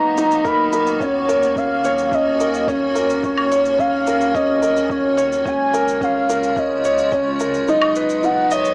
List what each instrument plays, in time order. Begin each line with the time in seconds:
Already playing: sub bass B1, ambient pad D#3 A#3 B3 F#4, felt piano D#4 B4, soft synth lead A#5
0.18 felt piano D#4, shaker
0.32 shaker
0.45 felt piano A#4, soft synth lead B5, kick, shaker
0.73 felt piano A#4, shaker
0.87 shaker
1.00 sub bass D#2, felt piano C#4, ambient pad C#4, soft synth lead C#5, kick, shaker
1.29 felt piano A#4, shaker
1.43 shaker
1.56 felt piano C#4, soft synth lead F5, kick, shaker
1.85 felt piano C#5, shaker
1.98 shaker
2.12 felt piano C#4, soft synth lead D#5, kick, shaker
2.40 felt piano A#4, shaker
2.54 shaker
2.67 felt piano C#4, soft synth lead C#5, kick, shaker
2.95 felt piano A#4, shaker
3.10 shaker
3.23 felt piano C#4, soft synth lead C#5, kick, shaker
3.38 low woodblock
3.52 felt piano C#5, shaker
3.65 shaker
3.79 felt piano C#4, soft synth lead F5, kick, shaker
4.07 felt piano A#4, shaker
4.21 shaker
4.35 felt piano C#4, soft synth lead D#5, kick, shaker
4.62 felt piano A#4, shaker
4.77 shaker
4.90 felt piano C#4, soft synth lead C#5, kick, shaker
5.17 felt piano C#5, shaker
5.32 shaker
5.45 sub bass C#2, ambient pad C#3 G#3 F4, felt piano C#4, soft synth lead G#5, kick, shaker
5.73 felt piano A#4, shaker
5.88 shaker
6.01 felt piano C#4, soft synth lead F5, kick, shaker
6.29 felt piano A#4, shaker
6.43 shaker
6.56 felt piano C#4, soft synth lead D#5, kick, shaker
6.84 felt piano C#5, shaker
6.98 shaker
7.12 felt piano C#4, soft synth lead C#5, kick, shaker
7.40 felt piano A#4, shaker
7.54 shaker
7.67 sub bass B1, ambient pad D#3 B3 F#4, felt piano D#4, soft synth lead D#5, shaker
7.81 low woodblock
7.95 felt piano B4, shaker
8.09 shaker
8.23 felt piano D#4, soft synth lead F#5, shaker
8.51 soft synth lead C#5, felt piano D#5, shaker
8.65 shaker